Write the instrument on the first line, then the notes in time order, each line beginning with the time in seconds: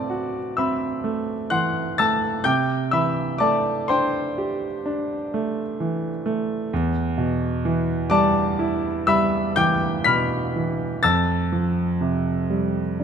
grand piano
Already playing: A2 E3 A3 C4 D5 A5 D6
0.10 F#4
0.57 C4 E5 B5 E6
1.04 A3
1.50 E3 F#5 C6 F#6
1.98 A3 A5 E6 A6
2.44 C3 G5 D6 G6
2.91 E3 E5 B5 E6
3.38 A3 D5 A5 D6
3.88 D4 C5 G5 C6
4.38 G4
4.86 D4
5.34 A3
5.80 E3
6.26 A3
6.73 E2
7.18 B2
7.65 E3
8.10 G3 D5 A5 D6
8.59 E4
9.07 G3 E5 B5 E6
9.56 E3 G5 D6 G6
10.04 B2 B5 F6 B6
10.56 E3
11.03 F2 A5 E6 A6
11.52 F3
12.01 C3
12.50 G3
13.00 D4